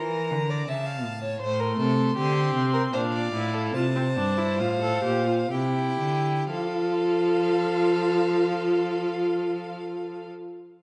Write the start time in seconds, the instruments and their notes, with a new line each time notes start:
Already playing: cello E3, violin A#4 A#5
0.31 cello D3
0.50 violin D5
0.68 cello C#3, violin E5 A5
0.86 violin F5
1.05 cello A2
1.24 violin C#5
1.41 cello A2, viola A3, violin C5 C6
1.60 violin A#4
1.78 cello C3, violin A4
2.16 cello D3, viola C4, violin G4
2.55 cello C3
2.73 violin A#4
2.93 cello A#2, viola D4, violin C5 F5
3.13 violin D5
3.34 cello A2, viola E4
3.53 violin A4
3.74 cello C3, viola F4, violin C5 A5
3.96 viola C4
4.17 cello G2, viola D4
4.38 viola E4
4.59 cello A2, viola F4, violin F5
4.82 viola A4
5.04 cello A#2, viola G4
5.28 viola F4
5.51 cello C3, viola E4, violin G4 G5
5.99 cello D3
6.49 cello F3, viola F4, violin A4 F5